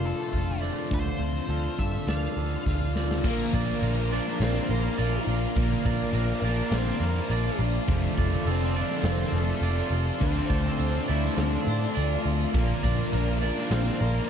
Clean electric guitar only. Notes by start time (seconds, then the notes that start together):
Already playing: F3 F4 D5
0.05 A4
0.34 F4
0.62 D5
0.91 D3
1.20 F4
1.50 A4
1.79 F4
2.08 D5
2.37 A4
2.68 F4
2.97 D5
3.25 A#3
3.54 D5
3.84 A#4
4.12 D5
4.42 F4
4.70 A#4
4.98 D5
5.29 F4
5.56 A#3
5.86 D5
6.15 A#4
6.45 D5
6.74 F4
7.03 A#4
7.31 D5
7.60 F4
7.89 F3
8.18 D5
8.47 A4
8.76 D5
9.05 F4
9.34 A4
9.63 D5
9.91 F4
10.21 D3
10.50 D5
10.78 A4
11.08 D5
11.37 F4
11.64 A4
11.94 D5
12.24 F4
12.54 A#3
12.83 D5
13.12 A#4
13.42 D5
13.71 F4
13.99 A#4